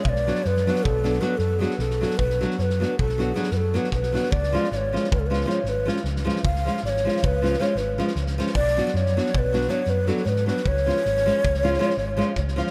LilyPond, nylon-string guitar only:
\new Staff \with { instrumentName = "Nylon-string guitar" } { \time 11/8 \tempo 4 = 156 r8 <fis b d' fis'>8 r8 <fis b d' fis'>8 r8 <fis b d' fis'>8 <fis b d' fis'>8 r8 <fis b d' fis'>8 r8 <fis b d' fis'>8 | r8 <fis b d' fis'>8 r8 <fis b d' fis'>8 r8 <fis b d' fis'>8 <fis b d' fis'>8 r8 <fis b d' fis'>8 r8 <fis b d' fis'>8 | r8 <eis gis cis' eis'>8 r8 <eis gis cis' eis'>8 r8 <eis gis cis' eis'>8 <eis gis cis' eis'>8 r8 <eis gis cis' eis'>8 r8 <eis gis cis' eis'>8 | r8 <eis gis cis' eis'>8 r8 <eis gis cis' eis'>8 r8 <eis gis cis' eis'>8 <eis gis cis' eis'>8 r8 <eis gis cis' eis'>8 r8 <eis gis cis' eis'>8 |
r8 <fis b d' fis'>8 r8 <fis b d' fis'>8 r8 <fis b d' fis'>8 <fis b d' fis'>8 r8 <fis b d' fis'>8 r8 <fis b d' fis'>8 | r8 <eis gis cis' eis'>8 r8 <eis gis cis' eis'>8 r8 <eis gis cis' eis'>8 <eis gis cis' eis'>8 r8 <eis gis cis' eis'>8 r8 <eis gis cis' eis'>8 | }